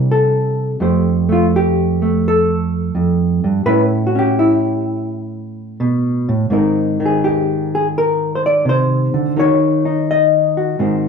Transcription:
0.00 0.78 C3 medium
0.00 0.78 G3 soft
0.00 0.79 D4 soft
0.00 0.79 E4 medium
0.00 0.11 A#4 loud
0.11 0.71 A4 medium
0.80 2.94 F2 medium
0.80 1.28 A3 soft
0.80 1.56 G4 soft
0.80 1.30 C5 soft
1.29 2.02 A3 medium
1.29 1.45 F4 medium
1.56 2.25 G4 medium
2.02 3.63 A3 soft
2.28 3.67 A4 medium
2.95 3.44 F2 medium
3.44 3.65 G2 medium
3.66 6.27 A2 medium
3.66 4.14 C#4 soft
3.66 4.06 E4 soft
3.66 3.82 B4 loud
4.07 4.38 F#4 medium
4.15 6.48 C#4 medium
4.15 5.10 G4 medium
4.39 6.30 E4 medium
5.80 6.29 B2 medium
6.29 6.50 A2 medium
6.50 9.33 G#2 medium
6.50 6.99 D#3 soft
6.50 9.34 C4 soft
6.50 7.24 D#4 soft
6.50 7.05 A#4 soft
7.00 9.35 D#3 medium
7.06 7.74 G#4 medium
7.24 8.43 G4 medium
7.75 7.87 G#4 medium
7.98 8.35 A#4 medium
8.35 8.46 C5 medium
8.46 8.66 D5 medium
8.65 9.13 C3 medium
8.69 9.38 C5 medium
9.14 9.36 D3 medium
9.36 10.78 D#3 medium
9.36 9.84 D#4 soft
9.36 10.56 F#4 soft
9.36 10.09 C#5 medium
9.85 10.76 D#4 medium
10.11 11.09 D#5 medium
10.57 10.76 F#4 soft
10.79 11.09 G#2 medium
10.79 11.09 D#3 soft
10.79 11.09 C4 soft
10.79 11.09 F#4 soft

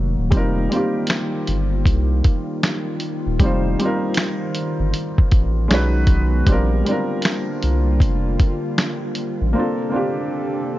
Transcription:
0.00 0.16 F1 loud
0.00 5.67 D#3 medium
0.00 0.29 F#3 medium
0.00 5.67 A#3 medium
0.00 0.29 F#4 medium
0.18 0.32 D#1 loud
0.31 0.68 F1 loud
0.31 0.64 G3 medium
0.31 5.67 G3 medium
0.31 0.65 C4 medium
0.31 0.66 D#4 medium
0.31 5.67 F4 medium
0.31 kick loud
0.31 closed hi-hat medium
0.36 0.66 F4 medium
0.36 0.67 A#4 loud
0.70 1.94 G3 medium
0.70 1.95 C4 medium
0.70 1.95 D#4 medium
0.70 closed hi-hat medium
0.74 1.96 F4 medium
0.74 1.97 G4 medium
1.07 finger snap loud
1.07 snare loud
1.07 closed hi-hat medium
1.47 1.84 G1 medium
1.47 closed hi-hat medium
1.85 2.22 C2 loud
1.85 kick loud
1.85 closed hi-hat medium
2.24 kick medium
2.24 closed hi-hat medium
2.63 finger snap medium
2.63 snare loud
2.63 closed hi-hat medium
3.00 closed hi-hat medium
3.27 3.39 D#1 loud
3.39 3.76 F1 loud
3.39 3.72 G3 medium
3.39 3.73 C4 medium
3.39 3.73 D#4 medium
3.39 kick loud
3.39 closed hi-hat medium
3.44 3.74 F4 medium
3.44 3.75 C5 medium
3.79 5.02 G3 medium
3.79 5.03 C4 medium
3.79 5.04 D#4 medium
3.79 closed hi-hat medium
3.84 5.05 F4 medium
3.84 5.06 A#4 loud
4.14 finger snap loud
4.14 snare loud
4.14 closed hi-hat medium
4.55 closed hi-hat medium
4.80 4.93 G1 medium
4.94 closed hi-hat medium
5.18 kick medium
5.32 5.68 A1 medium
5.32 kick medium
5.32 closed hi-hat medium
5.68 6.43 B1 loud
5.68 6.47 D#3 medium
5.68 6.34 G#3 medium
5.68 6.47 G#3 medium
5.68 6.47 B3 medium
5.68 6.35 C#4 medium
5.68 6.36 D#4 medium
5.68 6.47 F#4 medium
5.68 finger snap medium
5.68 snare loud
5.68 closed hi-hat medium
5.73 6.37 F#4 medium
5.73 6.38 B4 loud
6.07 kick medium
6.07 closed hi-hat medium
6.46 6.83 A#1 loud
6.46 9.52 D3 medium
6.46 6.79 G3 medium
6.46 9.52 G3 medium
6.46 9.52 A#3 medium
6.46 6.80 C4 medium
6.46 6.81 D4 medium
6.46 9.52 F4 medium
6.46 kick loud
6.46 closed hi-hat medium
6.51 6.82 F4 medium
6.51 6.82 A#4 loud
6.85 8.09 G3 medium
6.85 8.10 C4 medium
6.85 8.11 D4 medium
6.85 closed hi-hat medium
6.90 8.12 F4 medium
6.90 8.12 A#4 loud
7.22 finger snap loud
7.22 snare loud
7.22 closed hi-hat medium
7.63 7.99 C2 medium
7.63 closed hi-hat medium
8.00 8.37 F1 loud
8.00 kick medium
8.00 closed hi-hat medium
8.40 kick medium
8.40 closed hi-hat medium
8.78 finger snap medium
8.78 snare loud
8.78 closed hi-hat medium
9.15 closed hi-hat medium
9.41 9.55 A1 loud
9.53 10.79 C3 medium
9.53 9.86 A#3 medium
9.53 10.79 A#3 medium
9.53 9.87 C4 medium
9.53 10.79 D4 medium
9.53 9.88 D4 medium
9.53 10.79 A4 medium
9.58 9.89 F4 medium
9.58 9.90 A4 medium
9.89 10.79 A#3 medium
9.89 10.79 C4 medium
9.89 10.79 D4 medium
9.94 10.79 F4 medium
9.94 10.79 G4 loud

